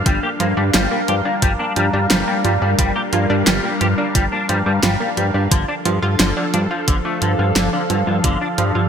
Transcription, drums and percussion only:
0.06 kick, closed hi-hat
0.40 closed hi-hat
0.74 snare, closed hi-hat
1.08 closed hi-hat
1.42 kick, closed hi-hat
1.76 closed hi-hat
2.10 snare, closed hi-hat
2.45 closed hi-hat
2.79 kick, closed hi-hat
3.13 closed hi-hat
3.47 snare, closed hi-hat
3.81 closed hi-hat
4.15 kick, closed hi-hat
4.49 closed hi-hat
4.83 snare, closed hi-hat
5.17 closed hi-hat
5.51 kick, closed hi-hat
5.85 closed hi-hat
6.20 snare, closed hi-hat
6.54 closed hi-hat
6.88 kick, closed hi-hat
7.22 closed hi-hat
7.56 snare, closed hi-hat
7.90 closed hi-hat
8.24 kick, closed hi-hat
8.58 closed hi-hat

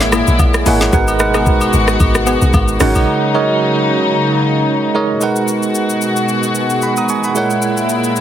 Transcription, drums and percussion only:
0.00 snare, shaker
0.12 cross-stick, high agogo, shaker
0.27 shaker
0.39 kick, high agogo, low woodblock, shaker
0.54 cross-stick, shaker
0.66 open hi-hat, shaker
0.81 snare, high agogo, shaker
0.93 kick, shaker
1.08 high agogo, shaker
1.19 cross-stick, shaker
1.34 cross-stick, high agogo, shaker
1.46 kick, shaker
1.61 high agogo, shaker
1.73 shaker
1.88 cross-stick, shaker
2.00 kick, high agogo, shaker
2.15 cross-stick, shaker
2.27 high agogo, shaker
2.42 shaker
2.53 kick, high agogo, low woodblock, shaker
2.68 shaker
2.80 cross-stick, open hi-hat, shaker
2.95 high agogo, shaker
5.21 shaker
5.36 shaker
5.48 shaker
5.63 shaker
5.75 shaker
5.90 shaker
6.02 shaker
6.16 shaker
6.29 shaker
6.43 shaker
6.55 shaker
6.70 shaker
6.82 shaker
6.97 shaker
7.09 shaker
7.23 shaker
7.36 shaker
7.50 shaker
7.62 shaker
7.77 shaker
7.89 shaker
8.04 shaker
8.16 shaker

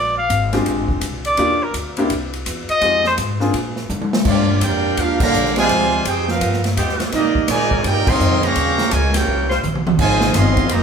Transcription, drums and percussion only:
0.30 hi-hat pedal, ride
0.53 snare, ride
0.66 ride
0.88 kick
1.01 hi-hat pedal, ride
1.25 ride
1.37 ride
1.74 hi-hat pedal, ride
1.97 ride
2.10 ride
2.33 ride
2.46 hi-hat pedal, ride
2.69 ride
2.81 ride
3.04 snare
3.18 hi-hat pedal, ride
3.40 snare
3.54 ride
3.76 snare
3.90 hi-hat pedal, high tom
4.01 high tom
4.13 snare
4.25 kick, crash
4.61 hi-hat pedal, ride
4.97 ride
5.20 kick, crash
5.33 hi-hat pedal
5.45 snare
5.56 snare, ride
5.69 ride
6.05 hi-hat pedal, ride
6.28 snare
6.41 ride
6.53 snare
6.64 snare, ride
6.77 hi-hat pedal, ride
6.89 snare
7.00 snare, ride
7.12 snare, ride
7.35 kick
7.48 snare, hi-hat pedal, ride
7.71 kick
7.84 ride
8.07 kick, crash
8.20 hi-hat pedal
8.43 ride
8.55 ride
8.78 snare
8.91 hi-hat pedal, ride
9.14 snare, ride
9.50 snare
9.63 hi-hat pedal, mid tom
9.75 mid tom
9.87 mid tom
9.99 kick, crash
10.21 snare
10.34 snare, hi-hat pedal, ride
10.57 kick, ride
10.69 ride

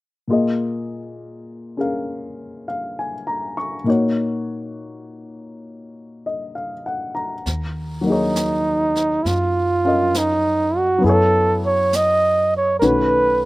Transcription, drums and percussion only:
7.46 brush sweep, snare
8.36 snare, hi-hat pedal
8.95 snare
9.26 brush sweep, snare
10.14 snare, hi-hat pedal
11.04 brush sweep
11.93 snare, hi-hat pedal
12.81 brush sweep, snare

